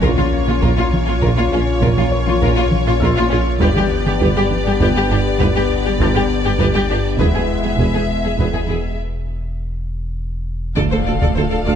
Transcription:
Already playing: felt piano A4 A5
0.02 double bass section A#1, sub bass A#1, tuba A#1, cello section A#2, analog synth pad A#3 C#4 F4 C#5, french horn section C#4 F4, viola section F4, violin section A#4 C#5, taiko
0.17 cello section A#2, violin section F4, viola section F4, taiko mid
0.47 cello section A#2, violin section F4, viola section F4, taiko mid
0.61 double bass section A#1, tuba A#1, cello section A#2, viola section F4, violin section A#4, taiko
0.77 cello section A#2, violin section F4, viola section F4
0.93 taiko mid
1.06 cello section A#2, violin section F4, viola section F4
1.22 double bass section A#1, tuba A#1, cello section A#2, viola section F4, violin section A#4, taiko
1.37 cello section A#2, violin section F4, viola section F4
1.52 double bass section A#1, tuba A#1, cello section A#2, violin section C#4, viola section F4
1.81 double bass section A#1, tuba A#1, cello section A#2, viola section F4, violin section A#4, taiko
1.97 cello section A#2, viola section F4, violin section F4, taiko mid
2.12 felt piano C#5 C#6
2.26 cello section A#2, violin section F4, viola section F4, taiko mid
2.41 double bass section A#1, tuba A#1, cello section A#2, viola section F4, violin section A#4, taiko
2.56 cello section A#2, violin section F4, viola section F4
2.72 taiko mid
2.86 cello section A#2, violin section F4, viola section F4
3.00 double bass section A#1, tuba A#1, cello section A#2, viola section F4, violin section A#4, felt piano E5 E6, taiko
3.16 cello section A#2, violin section F4, viola section F4
3.30 double bass section A#1, tuba A#1, cello section A#2, violin section C#4, viola section F4
3.60 double bass section G1, sub bass G1, tuba G1, cello section G2, french horn section B3 G4, analog synth pad B3 D4 G4 B4, viola section G4, violin section B4 D5, taiko
3.76 cello section G2, violin section G4, viola section G4, taiko mid
4.05 cello section G2, violin section G4, viola section G4, taiko mid
4.20 double bass section G1, tuba G1, cello section G2, viola section G4, violin section B4, taiko
4.36 cello section G2, viola section G4, violin section G4
4.51 taiko mid
4.66 cello section G2, viola section G4, violin section G4
4.80 double bass section G1, tuba G1, cello section G2, viola section G4, violin section B4, taiko
4.96 cello section G2, viola section G4, violin section G4
5.10 double bass section G1, tuba G1, cello section G2, violin section D4, viola section G4
5.39 double bass section G1, tuba G1, cello section G2, viola section G4, violin section B4, taiko
5.55 cello section G2, viola section G4, violin section G4
5.85 cello section G2, viola section G4, violin section G4
6.00 double bass section G1, tuba G1, cello section G2, viola section G4, violin section B4, felt piano A5 A6, taiko
6.15 cello section G2, viola section G4, violin section G4
6.44 cello section G2, viola section G4, violin section G4
6.59 tuba G1, double bass section G1, cello section G2, viola section G4, violin section B4, taiko
6.74 cello section G2, violin section G4, viola section G4
6.89 tuba G1, double bass section G1, cello section G2, violin section D4, viola section G4
7.18 double bass section E1, tuba E1, sub bass E1, cello section E2, analog synth pad G#3 B3 E4 B4, french horn section G#3 B3, viola section G#4, violin section B4 E5, taiko
7.35 cello section E2, violin section G#4, viola section G#4
7.63 cello section E2, violin section G#4, viola section G#4
7.78 tuba E1, double bass section E1, cello section E2, viola section G#4, violin section B4, taiko
7.94 cello section E2, violin section G#4, viola section G#4
8.23 cello section E2, violin section G#4, viola section G#4
8.38 double bass section E1, tuba E1, cello section E2, viola section G#4, violin section B4, taiko
8.53 cello section E2, viola section G#4, violin section G#4
8.68 double bass section E1, tuba E1, cello section E2, violin section E4, viola section G#4
10.76 sub bass D1, double bass section D2, cello section D2, tuba D2, analog synth pad A3 F4 A4 D5, viola section A4, violin section D5 F5, taiko, impact
10.91 cello section D2, viola section A4, violin section C5
11.06 double bass section D2, tuba D2, cello section D2, viola section A4, violin section D5
11.20 cello section D2, viola section A4, violin section D5, taiko
11.35 double bass section D2, tuba D2, cello section D2, french horn section A3 F4, viola section A4, violin section C5
11.50 cello section D2, viola section A4, violin section D5
11.64 cello section D2, double bass section D2, tuba D2, viola section A4, violin section D5, felt piano F5 F6

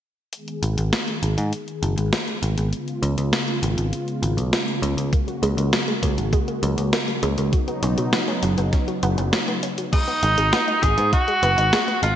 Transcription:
0.32 analog synth pad D#3 G#3 B3 G#4, closed hi-hat
0.48 closed hi-hat
0.63 picked electric bass G#1, closed hi-hat
0.78 picked electric bass G#1, closed hi-hat
0.93 snare, closed hi-hat
1.08 closed hi-hat
1.23 picked electric bass G#1, closed hi-hat
1.38 picked electric bass G#2, closed hi-hat
1.53 closed hi-hat
1.68 closed hi-hat
1.82 picked electric bass F#1, closed hi-hat
1.97 picked electric bass G#1, closed hi-hat
2.13 snare, closed hi-hat
2.28 closed hi-hat
2.43 picked electric bass G#1, closed hi-hat
2.58 picked electric bass G#1, closed hi-hat
2.73 analog synth pad C#3 F4, closed hi-hat
2.88 closed hi-hat
3.02 picked electric bass C#2, closed hi-hat
3.18 picked electric bass C#2, closed hi-hat
3.33 snare, closed hi-hat
3.48 closed hi-hat
3.63 picked electric bass G#1, closed hi-hat
3.77 picked electric bass G#1, closed hi-hat
3.93 closed hi-hat
4.08 closed hi-hat
4.22 picked electric bass G#1, closed hi-hat
4.37 picked electric bass B1, closed hi-hat
4.53 snare, closed hi-hat
4.68 closed hi-hat
4.82 picked electric bass C#2, closed hi-hat
4.97 picked electric bass C#2, closed hi-hat
5.12 analog synth pad A#3 F#4, synth arpeggio sound A#3, kick, closed hi-hat
5.28 synth arpeggio sound F#3, closed hi-hat
5.43 picked electric bass C#2, synth arpeggio sound G#3, closed hi-hat
5.57 picked electric bass C#2, synth arpeggio sound A#3, closed hi-hat
5.73 synth arpeggio sound F#3, snare, closed hi-hat
5.88 synth arpeggio sound G#3, closed hi-hat
6.03 picked electric bass C#2, synth arpeggio sound A#3, kick, closed hi-hat
6.18 picked electric bass G#1, synth arpeggio sound F#3, closed hi-hat
6.33 synth arpeggio sound G#3, kick, closed hi-hat
6.48 synth arpeggio sound A#3, closed hi-hat
6.63 picked electric bass C#2, synth arpeggio sound F#3, closed hi-hat
6.78 picked electric bass C#2, synth arpeggio sound G#3, closed hi-hat
6.93 synth arpeggio sound A#3, snare, closed hi-hat
7.08 synth arpeggio sound F#3, closed hi-hat
7.23 picked electric bass C#2, synth arpeggio sound G#3, closed hi-hat
7.38 picked electric bass C#2, synth arpeggio sound A#3, closed hi-hat
7.53 analog synth pad F#3 B3 D#4, synth arpeggio sound F#3, kick, closed hi-hat
7.68 synth arpeggio sound B3, closed hi-hat
7.83 picked electric bass B1, synth arpeggio sound C#4, closed hi-hat
7.98 picked electric bass B1, synth arpeggio sound F#3, closed hi-hat
8.13 synth arpeggio sound B3, snare, closed hi-hat
8.28 synth arpeggio sound C#4, closed hi-hat
8.43 picked electric bass F#1, synth arpeggio sound F#3, closed hi-hat
8.58 picked electric bass F#1, synth arpeggio sound B3, closed hi-hat
8.73 synth arpeggio sound C#4, kick, snare, closed hi-hat
8.88 synth arpeggio sound F#3, closed hi-hat
9.03 picked electric bass F#1, synth arpeggio sound B3, closed hi-hat
9.18 picked electric bass F#1, synth arpeggio sound C#4, closed hi-hat
9.33 synth arpeggio sound F#3, snare, closed hi-hat
9.48 synth arpeggio sound B3, closed hi-hat
9.63 synth arpeggio sound C#4, closed hi-hat
9.78 synth arpeggio sound F#3, closed hi-hat
9.93 synth arpeggio sound G#3, tenor saxophone D#4, kick, closed hi-hat, crash
10.08 synth arpeggio sound B3, closed hi-hat
10.23 picked electric bass G#1, synth arpeggio sound D#4, closed hi-hat
10.38 picked electric bass G#1, synth arpeggio sound G#3, closed hi-hat
10.53 synth arpeggio sound B3, snare, closed hi-hat
10.68 synth arpeggio sound D#4, closed hi-hat
10.83 picked electric bass G#1, synth arpeggio sound G#3, tenor saxophone G#4, kick, closed hi-hat
10.98 picked electric bass G#2, synth arpeggio sound B3, closed hi-hat
11.13 synth arpeggio sound D#4, tenor saxophone F#4, kick, closed hi-hat
11.28 synth arpeggio sound G#3, closed hi-hat
11.43 picked electric bass F#1, synth arpeggio sound B3, closed hi-hat
11.58 picked electric bass G#1, synth arpeggio sound D#4, closed hi-hat
11.73 synth arpeggio sound G#3, snare, closed hi-hat
11.88 synth arpeggio sound B3, closed hi-hat
12.03 picked electric bass G#1, synth arpeggio sound D#4, tenor saxophone F4, closed hi-hat

